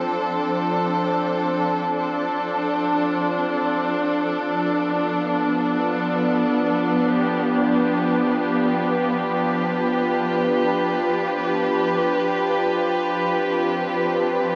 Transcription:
0.00 12.11 F3 medium
0.00 14.55 F3 medium
0.00 4.29 C4 medium
0.00 14.55 D4 medium
0.00 14.55 F4 medium
0.00 7.12 A4 medium
0.00 4.28 C5 medium
4.67 12.09 B3 medium
7.14 14.55 G4 medium
7.81 14.55 B4 medium
13.37 14.55 C4 medium

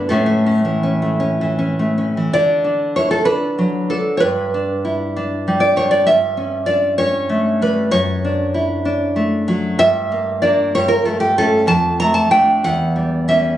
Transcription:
0.09 2.28 A2 medium
0.09 0.45 C#4 medium
0.09 1.92 A4 medium
0.26 0.64 A3 soft
0.46 0.82 C#4 soft
0.65 1.40 E3 soft
0.83 1.19 C#4 soft
1.02 1.78 A3 soft
1.20 1.57 C#4 soft
1.41 2.16 E3 soft
1.59 1.97 C#4 soft
1.79 2.32 A3 soft
1.98 2.32 C#4 soft
2.17 2.33 E3 soft
2.33 4.21 D3 medium
2.33 2.95 D5 medium
2.64 3.25 D4 soft
2.96 3.89 E4 soft
2.96 3.10 C#5 medium
3.11 3.25 A4 medium
3.25 3.89 D4 medium
3.25 3.88 B4 medium
3.59 4.23 F#3 soft
3.90 4.23 D4 soft
3.90 4.15 A4 medium
4.17 5.56 B4 medium
4.17 4.24 C#5 medium
4.22 6.03 G2 medium
4.54 5.15 D4 soft
4.85 5.60 E4 soft
5.16 6.08 D4 medium
5.48 6.09 G3 soft
5.60 5.76 D5 medium
5.76 6.08 D3 soft
5.76 5.90 C#5 medium
5.91 6.07 D5 medium
6.07 7.89 G2 medium
6.07 6.66 E5 loud
6.37 6.98 C#4 soft
6.66 7.61 D4 soft
6.66 6.97 D5 loud
6.98 7.93 C#4 medium
6.98 7.59 C#5 medium
7.29 7.92 A3 soft
7.62 7.93 G3 soft
7.62 7.92 B4 medium
7.91 9.74 F#2 medium
7.91 9.43 C#5 loud
8.25 8.84 D4 medium
8.54 9.48 E4 soft
8.85 9.79 D4 medium
9.16 9.79 A3 soft
9.48 9.79 F#3 medium
9.79 10.71 G2 medium
9.79 10.39 E5 loud
10.12 10.42 A#3 medium
10.42 10.71 A#3 medium
10.42 10.71 D4 medium
10.42 10.73 D5 medium
10.75 11.67 G2 medium
10.75 10.90 C#5 loud
10.88 11.05 A#4 loud
11.05 11.37 A3 medium
11.05 11.20 A4 medium
11.20 11.37 G4 medium
11.38 11.66 A3 medium
11.38 11.66 C#4 medium
11.38 11.67 A4 loud
11.67 12.61 F2 medium
11.67 11.99 A5 loud
12.00 12.30 A3 medium
12.00 12.14 A#5 loud
12.14 12.31 A5 medium
12.31 12.61 A3 medium
12.31 12.62 D4 medium
12.31 12.63 G5 loud
12.64 13.57 E2 medium
12.64 13.27 F#5 loud
12.96 13.27 G3 medium
13.28 13.57 G3 medium
13.28 13.57 C#4 medium
13.28 13.57 E5 loud

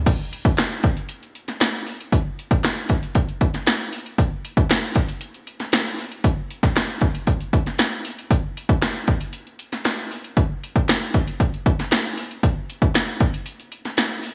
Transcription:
0.06 kick loud
0.06 closed hi-hat medium
0.06 crash medium
0.33 closed hi-hat medium
0.45 kick loud
0.45 closed hi-hat medium
0.58 snare loud
0.58 clap medium
0.58 closed hi-hat medium
0.83 kick loud
0.83 closed hi-hat medium
0.97 closed hi-hat medium
1.09 closed hi-hat medium
1.23 closed hi-hat soft
1.35 closed hi-hat medium
1.48 snare soft
1.48 closed hi-hat medium
1.60 snare loud
1.60 clap medium
1.60 closed hi-hat medium
1.86 open hi-hat medium
2.00 closed hi-hat medium
2.12 kick loud
2.12 closed hi-hat medium
2.39 closed hi-hat medium
2.51 kick loud
2.51 closed hi-hat medium
2.64 snare loud
2.64 clap medium
2.64 closed hi-hat medium
2.89 kick medium
2.89 closed hi-hat medium
3.03 closed hi-hat medium
3.15 kick medium
3.15 closed hi-hat medium
3.29 closed hi-hat soft
3.41 kick medium
3.41 closed hi-hat medium
3.54 snare soft
3.54 closed hi-hat medium
3.66 snare loud
3.66 clap medium
3.66 closed hi-hat medium
3.93 open hi-hat medium
4.06 closed hi-hat medium
4.18 kick loud
4.18 closed hi-hat medium
4.45 closed hi-hat medium
4.57 kick loud
4.57 closed hi-hat medium
4.70 snare loud
4.70 clap medium
4.70 closed hi-hat medium
4.95 kick medium
4.95 closed hi-hat medium
5.09 closed hi-hat medium
5.21 closed hi-hat medium
5.34 closed hi-hat soft
5.47 closed hi-hat medium
5.60 snare soft
5.60 closed hi-hat soft
5.72 snare loud
5.72 clap medium
5.72 closed hi-hat medium
5.98 open hi-hat medium
6.12 closed hi-hat medium
6.24 kick loud
6.24 closed hi-hat loud
6.51 closed hi-hat medium
6.63 kick medium
6.63 snare soft
6.63 closed hi-hat medium
6.76 snare loud
6.76 clap medium
6.76 closed hi-hat medium
6.89 closed hi-hat soft
7.01 kick loud
7.01 closed hi-hat medium
7.15 closed hi-hat medium
7.27 kick medium
7.27 closed hi-hat medium
7.41 closed hi-hat soft
7.53 kick medium
7.53 closed hi-hat medium
7.66 snare soft
7.66 closed hi-hat soft
7.78 snare loud
7.78 clap medium
7.78 closed hi-hat medium
7.92 closed hi-hat soft
8.05 open hi-hat medium
8.19 closed hi-hat medium
8.31 kick loud
8.31 closed hi-hat loud
8.57 closed hi-hat medium
8.69 kick loud
8.69 closed hi-hat medium
8.82 snare loud
8.82 clap medium
8.82 closed hi-hat medium
9.07 kick loud
9.07 closed hi-hat medium
9.21 closed hi-hat medium
9.33 closed hi-hat medium
9.47 closed hi-hat soft
9.59 closed hi-hat medium
9.72 snare soft
9.72 closed hi-hat soft
9.85 snare loud
9.85 clap medium
9.85 closed hi-hat medium
10.11 open hi-hat medium
10.24 closed hi-hat medium
10.37 kick loud
10.37 closed hi-hat medium
10.64 closed hi-hat medium
10.76 kick loud
10.76 closed hi-hat medium
10.89 snare medium
10.89 clap medium
10.89 closed hi-hat medium
11.14 kick medium
11.14 closed hi-hat medium
11.28 closed hi-hat medium
11.40 kick medium
11.40 closed hi-hat medium
11.54 closed hi-hat soft
11.66 kick loud
11.66 closed hi-hat medium
11.79 snare soft
11.79 closed hi-hat medium
11.91 snare loud
11.91 clap medium
11.91 closed hi-hat medium
12.17 open hi-hat medium
12.31 closed hi-hat medium
12.43 kick loud
12.43 closed hi-hat loud
12.70 closed hi-hat medium
12.82 kick medium
12.82 closed hi-hat medium
12.95 snare loud
12.95 clap medium
12.95 closed hi-hat medium
13.20 kick loud
13.20 closed hi-hat medium
13.34 closed hi-hat medium
13.46 closed hi-hat loud
13.60 closed hi-hat soft
13.72 closed hi-hat medium
13.85 snare soft
13.85 closed hi-hat soft
13.97 snare loud
13.97 clap medium
13.97 closed hi-hat medium
14.23 open hi-hat medium

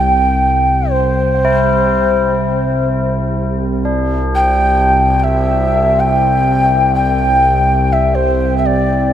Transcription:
0.00 3.12 C2 medium
0.00 0.92 G5 medium
0.91 2.87 C5 medium
1.45 3.64 E4 soft
3.13 9.13 C2 medium
3.85 9.13 D4 soft
4.35 5.19 G5 medium
5.19 5.25 G5 medium
5.24 6.01 E5 medium
6.00 6.94 G5 medium
6.95 7.94 G5 medium
7.92 8.16 E5 medium
8.15 8.57 C5 medium
8.57 8.67 E5 soft
8.66 9.13 D5 medium

